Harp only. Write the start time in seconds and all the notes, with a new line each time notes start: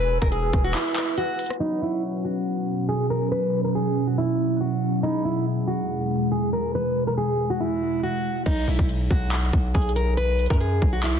Already playing: G#3 B3 E4 G#4
1.59 F#3 B3 C#4 F#4
5.02 G#3 B3 E4 G#4